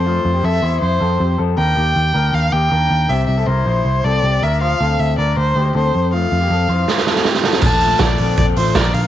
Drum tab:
CC |----------------|----------------|----------------|----------------|
HH |----------------|----------------|----------------|----------------|
SD |----------------|----------------|----------------|----------------|
BD |----------------|----------------|----------------|----------------|

CC |----------------|x---------------|
HH |----------------|--o-x-o-x-o-x-o-|
SD |--------oooooooo|----o-------o---|
BD |----------------|o---o---o---o---|